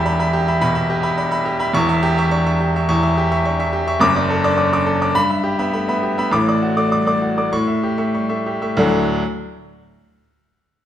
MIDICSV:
0, 0, Header, 1, 2, 480
1, 0, Start_track
1, 0, Key_signature, 2, "major"
1, 0, Tempo, 565504
1, 1471, Time_signature, 4, 2, 24, 8
1, 3393, Tempo, 577478
1, 4833, Tempo, 591133
1, 5793, Tempo, 613497
1, 8876, End_track
2, 0, Start_track
2, 0, Title_t, "Grand piano"
2, 0, Program_c, 0, 0
2, 0, Control_c, 0, 64, 127
2, 0, Note_on_c, 0, 28, 103
2, 0, Note_on_c, 0, 40, 120
2, 0, Note_on_c, 0, 67, 104
2, 0, Note_on_c, 0, 76, 83
2, 0, Note_on_c, 0, 83, 88
2, 43, Note_on_c, 0, 62, 71
2, 48, Note_off_c, 0, 83, 0
2, 48, Note_on_c, 0, 83, 96
2, 155, Note_off_c, 0, 83, 0
2, 160, Note_off_c, 0, 62, 0
2, 161, Note_off_c, 0, 76, 0
2, 161, Note_on_c, 0, 76, 88
2, 168, Note_on_c, 0, 83, 101
2, 268, Note_off_c, 0, 76, 0
2, 271, Note_off_c, 0, 83, 0
2, 282, Note_off_c, 0, 67, 0
2, 282, Note_on_c, 0, 67, 99
2, 407, Note_on_c, 0, 76, 84
2, 408, Note_on_c, 0, 83, 86
2, 472, Note_off_c, 0, 67, 0
2, 486, Note_off_c, 0, 28, 0
2, 489, Note_off_c, 0, 40, 0
2, 508, Note_off_c, 0, 83, 0
2, 511, Note_off_c, 0, 76, 0
2, 521, Note_on_c, 0, 83, 113
2, 523, Note_on_c, 0, 47, 98
2, 624, Note_off_c, 0, 83, 0
2, 635, Note_on_c, 0, 76, 82
2, 637, Note_on_c, 0, 83, 92
2, 711, Note_off_c, 0, 47, 0
2, 743, Note_off_c, 0, 76, 0
2, 744, Note_off_c, 0, 83, 0
2, 762, Note_on_c, 0, 67, 92
2, 874, Note_on_c, 0, 76, 87
2, 876, Note_on_c, 0, 83, 97
2, 949, Note_off_c, 0, 67, 0
2, 981, Note_off_c, 0, 76, 0
2, 982, Note_off_c, 0, 83, 0
2, 996, Note_on_c, 0, 62, 68
2, 999, Note_on_c, 0, 83, 89
2, 1104, Note_off_c, 0, 83, 0
2, 1112, Note_on_c, 0, 76, 88
2, 1114, Note_off_c, 0, 62, 0
2, 1117, Note_on_c, 0, 83, 101
2, 1219, Note_off_c, 0, 76, 0
2, 1222, Note_off_c, 0, 83, 0
2, 1234, Note_on_c, 0, 67, 90
2, 1353, Note_on_c, 0, 76, 93
2, 1358, Note_on_c, 0, 83, 103
2, 1424, Note_off_c, 0, 67, 0
2, 1460, Note_off_c, 0, 76, 0
2, 1463, Note_off_c, 0, 83, 0
2, 1473, Note_on_c, 0, 28, 104
2, 1481, Note_on_c, 0, 85, 127
2, 1483, Note_on_c, 0, 40, 122
2, 1489, Control_c, 0, 64, 0
2, 1593, Note_off_c, 0, 85, 0
2, 1604, Note_on_c, 0, 76, 96
2, 1606, Note_on_c, 0, 85, 96
2, 1644, Control_c, 0, 64, 127
2, 1707, Note_off_c, 0, 76, 0
2, 1708, Note_off_c, 0, 85, 0
2, 1721, Note_on_c, 0, 67, 111
2, 1848, Note_on_c, 0, 76, 92
2, 1855, Note_on_c, 0, 85, 94
2, 1910, Note_off_c, 0, 67, 0
2, 1950, Note_off_c, 0, 76, 0
2, 1951, Note_off_c, 0, 85, 0
2, 1964, Note_on_c, 0, 85, 102
2, 1965, Note_on_c, 0, 62, 84
2, 2080, Note_off_c, 0, 62, 0
2, 2080, Note_off_c, 0, 85, 0
2, 2091, Note_on_c, 0, 76, 87
2, 2093, Note_on_c, 0, 85, 94
2, 2192, Note_off_c, 0, 76, 0
2, 2193, Note_off_c, 0, 85, 0
2, 2211, Note_on_c, 0, 67, 85
2, 2342, Note_on_c, 0, 76, 79
2, 2347, Note_on_c, 0, 85, 86
2, 2395, Note_off_c, 0, 67, 0
2, 2407, Note_off_c, 0, 28, 0
2, 2413, Note_off_c, 0, 40, 0
2, 2438, Note_off_c, 0, 76, 0
2, 2438, Note_off_c, 0, 85, 0
2, 2451, Note_on_c, 0, 85, 112
2, 2452, Note_on_c, 0, 40, 120
2, 2560, Note_off_c, 0, 85, 0
2, 2569, Note_on_c, 0, 76, 85
2, 2572, Note_on_c, 0, 85, 86
2, 2670, Note_off_c, 0, 76, 0
2, 2672, Note_off_c, 0, 85, 0
2, 2695, Note_on_c, 0, 67, 95
2, 2814, Note_on_c, 0, 76, 90
2, 2816, Note_on_c, 0, 85, 89
2, 2875, Note_off_c, 0, 67, 0
2, 2912, Note_off_c, 0, 76, 0
2, 2913, Note_off_c, 0, 85, 0
2, 2931, Note_on_c, 0, 85, 88
2, 2935, Note_on_c, 0, 62, 72
2, 3042, Note_off_c, 0, 85, 0
2, 3043, Note_off_c, 0, 62, 0
2, 3051, Note_on_c, 0, 76, 84
2, 3055, Note_on_c, 0, 85, 87
2, 3150, Note_off_c, 0, 76, 0
2, 3152, Note_off_c, 0, 85, 0
2, 3166, Note_on_c, 0, 67, 92
2, 3287, Note_on_c, 0, 76, 88
2, 3290, Note_on_c, 0, 85, 101
2, 3351, Note_off_c, 0, 67, 0
2, 3372, Note_off_c, 0, 40, 0
2, 3389, Note_off_c, 0, 76, 0
2, 3390, Note_off_c, 0, 85, 0
2, 3392, Note_on_c, 0, 30, 104
2, 3400, Note_on_c, 0, 42, 122
2, 3405, Note_on_c, 0, 86, 126
2, 3409, Control_c, 0, 64, 0
2, 3518, Note_off_c, 0, 86, 0
2, 3525, Control_c, 0, 64, 127
2, 3530, Note_on_c, 0, 86, 92
2, 3531, Note_on_c, 0, 74, 88
2, 3629, Note_off_c, 0, 86, 0
2, 3630, Note_off_c, 0, 74, 0
2, 3647, Note_on_c, 0, 69, 99
2, 3764, Note_on_c, 0, 74, 95
2, 3764, Note_on_c, 0, 86, 99
2, 3766, Note_on_c, 0, 62, 89
2, 3831, Note_off_c, 0, 69, 0
2, 3861, Note_off_c, 0, 86, 0
2, 3866, Note_off_c, 0, 74, 0
2, 3874, Note_on_c, 0, 86, 90
2, 3876, Note_on_c, 0, 61, 73
2, 3950, Note_off_c, 0, 62, 0
2, 3992, Note_off_c, 0, 86, 0
2, 3993, Note_off_c, 0, 61, 0
2, 4001, Note_on_c, 0, 62, 84
2, 4002, Note_on_c, 0, 74, 83
2, 4004, Note_on_c, 0, 86, 100
2, 4105, Note_off_c, 0, 74, 0
2, 4106, Note_off_c, 0, 86, 0
2, 4113, Note_on_c, 0, 69, 91
2, 4188, Note_off_c, 0, 62, 0
2, 4239, Note_on_c, 0, 62, 71
2, 4241, Note_on_c, 0, 74, 86
2, 4242, Note_on_c, 0, 86, 89
2, 4303, Note_off_c, 0, 69, 0
2, 4321, Note_off_c, 0, 30, 0
2, 4325, Note_off_c, 0, 42, 0
2, 4343, Note_off_c, 0, 74, 0
2, 4344, Note_off_c, 0, 86, 0
2, 4352, Note_on_c, 0, 83, 127
2, 4353, Note_on_c, 0, 43, 108
2, 4354, Note_off_c, 0, 62, 0
2, 4364, Control_c, 0, 64, 0
2, 4464, Note_off_c, 0, 83, 0
2, 4472, Note_on_c, 0, 76, 75
2, 4477, Note_on_c, 0, 83, 78
2, 4512, Control_c, 0, 64, 127
2, 4579, Note_off_c, 0, 76, 0
2, 4581, Note_off_c, 0, 83, 0
2, 4589, Note_on_c, 0, 67, 91
2, 4715, Note_on_c, 0, 76, 78
2, 4716, Note_on_c, 0, 59, 74
2, 4717, Note_on_c, 0, 83, 86
2, 4783, Note_off_c, 0, 67, 0
2, 4822, Note_off_c, 0, 76, 0
2, 4823, Note_off_c, 0, 83, 0
2, 4835, Note_on_c, 0, 57, 70
2, 4836, Note_on_c, 0, 83, 87
2, 4906, Note_off_c, 0, 59, 0
2, 4949, Note_off_c, 0, 83, 0
2, 4953, Note_off_c, 0, 57, 0
2, 4957, Note_on_c, 0, 59, 84
2, 4957, Note_on_c, 0, 76, 79
2, 4962, Note_on_c, 0, 83, 81
2, 5062, Note_off_c, 0, 76, 0
2, 5065, Note_off_c, 0, 83, 0
2, 5076, Note_on_c, 0, 67, 78
2, 5146, Note_off_c, 0, 59, 0
2, 5197, Note_on_c, 0, 76, 83
2, 5198, Note_on_c, 0, 59, 77
2, 5204, Note_on_c, 0, 83, 97
2, 5265, Note_off_c, 0, 67, 0
2, 5284, Note_off_c, 0, 43, 0
2, 5302, Note_off_c, 0, 76, 0
2, 5306, Note_off_c, 0, 83, 0
2, 5308, Note_on_c, 0, 33, 95
2, 5314, Note_off_c, 0, 59, 0
2, 5317, Note_on_c, 0, 86, 107
2, 5319, Note_on_c, 0, 45, 105
2, 5328, Control_c, 0, 64, 0
2, 5435, Note_off_c, 0, 86, 0
2, 5444, Note_on_c, 0, 74, 88
2, 5447, Note_on_c, 0, 86, 82
2, 5468, Control_c, 0, 64, 127
2, 5545, Note_off_c, 0, 74, 0
2, 5548, Note_off_c, 0, 86, 0
2, 5558, Note_on_c, 0, 66, 85
2, 5675, Note_on_c, 0, 57, 76
2, 5676, Note_on_c, 0, 74, 83
2, 5678, Note_on_c, 0, 86, 88
2, 5747, Note_off_c, 0, 66, 0
2, 5783, Note_off_c, 0, 74, 0
2, 5784, Note_off_c, 0, 86, 0
2, 5795, Note_on_c, 0, 55, 66
2, 5800, Note_on_c, 0, 86, 90
2, 5864, Note_off_c, 0, 57, 0
2, 5908, Note_off_c, 0, 86, 0
2, 5911, Note_off_c, 0, 55, 0
2, 5912, Note_on_c, 0, 57, 75
2, 5913, Note_on_c, 0, 74, 84
2, 5920, Note_on_c, 0, 86, 81
2, 6019, Note_off_c, 0, 74, 0
2, 6022, Note_off_c, 0, 86, 0
2, 6034, Note_on_c, 0, 66, 74
2, 6102, Note_off_c, 0, 57, 0
2, 6155, Note_on_c, 0, 74, 70
2, 6156, Note_on_c, 0, 57, 68
2, 6158, Note_on_c, 0, 86, 70
2, 6223, Note_off_c, 0, 66, 0
2, 6239, Note_off_c, 0, 33, 0
2, 6244, Note_off_c, 0, 45, 0
2, 6260, Note_off_c, 0, 74, 0
2, 6261, Note_off_c, 0, 86, 0
2, 6272, Note_off_c, 0, 57, 0
2, 6273, Note_on_c, 0, 45, 105
2, 6274, Note_on_c, 0, 85, 107
2, 6284, Control_c, 0, 64, 0
2, 6383, Note_off_c, 0, 85, 0
2, 6389, Note_on_c, 0, 76, 66
2, 6394, Note_on_c, 0, 85, 66
2, 6418, Control_c, 0, 64, 127
2, 6496, Note_off_c, 0, 76, 0
2, 6499, Note_off_c, 0, 85, 0
2, 6514, Note_on_c, 0, 67, 81
2, 6629, Note_on_c, 0, 57, 70
2, 6629, Note_on_c, 0, 85, 75
2, 6630, Note_on_c, 0, 76, 65
2, 6704, Note_off_c, 0, 67, 0
2, 6738, Note_off_c, 0, 76, 0
2, 6738, Note_off_c, 0, 85, 0
2, 6757, Note_on_c, 0, 55, 55
2, 6759, Note_on_c, 0, 85, 74
2, 6824, Note_off_c, 0, 57, 0
2, 6864, Note_off_c, 0, 85, 0
2, 6873, Note_on_c, 0, 57, 68
2, 6873, Note_on_c, 0, 76, 69
2, 6875, Note_on_c, 0, 85, 66
2, 6877, Note_off_c, 0, 55, 0
2, 6986, Note_off_c, 0, 76, 0
2, 6987, Note_off_c, 0, 85, 0
2, 7007, Note_on_c, 0, 67, 80
2, 7074, Note_off_c, 0, 57, 0
2, 7127, Note_on_c, 0, 57, 65
2, 7127, Note_on_c, 0, 76, 70
2, 7132, Note_on_c, 0, 85, 75
2, 7200, Note_off_c, 0, 67, 0
2, 7218, Note_off_c, 0, 45, 0
2, 7234, Note_off_c, 0, 76, 0
2, 7237, Note_off_c, 0, 85, 0
2, 7242, Note_off_c, 0, 57, 0
2, 7245, Note_on_c, 0, 38, 122
2, 7249, Note_on_c, 0, 45, 97
2, 7251, Note_on_c, 0, 54, 100
2, 7253, Note_on_c, 0, 57, 95
2, 7259, Control_c, 0, 64, 0
2, 7260, Note_on_c, 0, 62, 98
2, 7260, Note_on_c, 0, 66, 96
2, 7386, Control_c, 0, 64, 127
2, 7511, Note_off_c, 0, 38, 0
2, 7513, Note_off_c, 0, 45, 0
2, 7514, Note_off_c, 0, 54, 0
2, 7515, Note_off_c, 0, 57, 0
2, 7519, Note_off_c, 0, 62, 0
2, 7519, Note_off_c, 0, 66, 0
2, 7592, Control_c, 0, 64, 0
2, 8876, End_track
0, 0, End_of_file